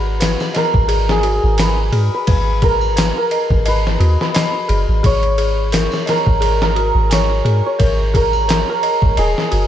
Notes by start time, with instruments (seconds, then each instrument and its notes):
Already playing: 808-style bass G#1, santur F#4 B4, synth bell G#4
0.20 synth bell B4, snare, ride, tambourine
0.40 snare, triangle
0.54 santur A#4, synth bell D#5, snare, ride
0.74 808-style bass G#1, kick
0.88 synth bell G#4, ride
1.09 santur G#4, snare
1.23 synth bell F#4, ride
1.44 808-style bass G#1
1.57 santur B4, synth bell G#5, snare, ride, tambourine
1.92 808-style bass G#2, synth bell G#4, ride
2.14 santur B4
2.27 808-style bass G#1, synth bell B4, kick, ride
2.62 synth bell G#4, santur A#4, kick, ride
2.81 triangle
2.96 synth bell B4, snare, ride, tambourine
3.18 santur A#4
3.31 synth bell D#5, ride
3.50 808-style bass G#1, kick
3.66 santur B4, synth bell D#5, ride
3.87 snare
4.00 808-style bass D#2, synth bell F#4, ride
4.21 santur B4, snare
4.34 synth bell D#5, snare, ride, tambourine
4.69 808-style bass F#1, synth bell G#4, ride
4.89 808-style bass G#1
5.03 808-style bass G#1, synth bell G#4, santur C#5, kick, ride
5.23 ride
5.38 synth bell G#4, ride
5.72 synth bell A#4, snare, ride, tambourine
5.92 snare, triangle
6.06 santur A#4, synth bell D#5, snare, ride
6.27 808-style bass G#1, kick
6.41 synth bell G#4, ride
6.62 santur A#4, snare
6.75 synth bell F#4, ride
6.95 808-style bass G#1
7.10 santur C#5, synth bell G#5, snare, ride, tambourine
7.45 808-style bass G#2, synth bell G#4, ride
7.66 santur C#5
7.79 808-style bass G#1, synth bell A#4, kick, ride
8.14 synth bell G#4, santur A#4, kick, ride
8.33 triangle
8.48 synth bell A#4, snare, ride, tambourine
8.70 santur A#4
8.83 synth bell D#5, ride
9.02 808-style bass G#1, kick
9.17 808-style bass D#1, santur G#4, synth bell D#5, ride
9.38 snare
9.51 808-style bass F#1, synth bell F#4, ride